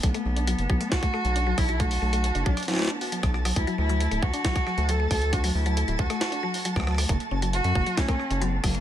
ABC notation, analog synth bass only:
X:1
M:4/4
L:1/16
Q:1/4=136
K:Dphr
V:1 name="Analog synth bass" clef=bass
=B,,, z B,,,3 ^F,,, B,,, z4 B,,,3 B,,,2- | =B,,,2 B,,,3 ^F,,, B,,, z6 B,,,3 | D,, z D,,3 D,,, D,, z4 D,,3 D,,2- | D,,2 D,,3 D,,, D,, z6 D,,3 |
^F,,, z F,,,3 ^F,, F,,, z4 F,,,3 F,,,2 |]